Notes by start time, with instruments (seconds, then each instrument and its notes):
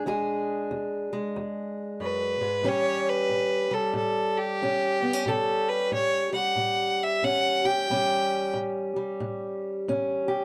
0.06 steel-string acoustic guitar E2 G#3 D4 G#4
0.71 steel-string acoustic guitar E2
1.13 steel-string acoustic guitar G#3
1.36 steel-string acoustic guitar E2
2.00 steel-string acoustic guitar F#2, fiddle B4
2.41 steel-string acoustic guitar G#2
2.63 steel-string acoustic guitar A2 G3 C#4 G4
2.68 fiddle C#5
3.09 fiddle B4
3.29 steel-string acoustic guitar A2
3.71 steel-string acoustic guitar G3, fiddle A4
3.94 steel-string acoustic guitar A2, fiddle A4
4.37 fiddle G4
4.62 steel-string acoustic guitar A2 C#4
5.02 steel-string acoustic guitar B3
5.13 steel-string acoustic guitar C#4
5.26 steel-string acoustic guitar A2 G3 C#4 G4, fiddle A4
5.69 fiddle B4
5.92 steel-string acoustic guitar A2, fiddle C#5
6.32 steel-string acoustic guitar G3, fiddle F#5
6.56 steel-string acoustic guitar A2
7.03 fiddle E5
7.22 steel-string acoustic guitar A2 C#4, fiddle F#5
7.65 steel-string acoustic guitar G4, fiddle G5
7.90 steel-string acoustic guitar A2 G3 C#4 G4
8.54 steel-string acoustic guitar A2
8.96 steel-string acoustic guitar G3
9.20 steel-string acoustic guitar A2
9.88 steel-string acoustic guitar A2 C#4
10.28 steel-string acoustic guitar G4